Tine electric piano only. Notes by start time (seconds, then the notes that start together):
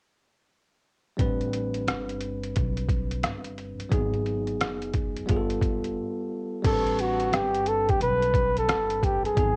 1.17 G3 C4 D4
1.21 B4
3.89 F#3 B3 D#4 G#4
5.26 G3 B3 F4
5.30 G#4
5.37 A4
6.62 G3 C4 D4
6.66 A#4
6.73 B4
9.35 F#3 B3 D#4
9.39 G#4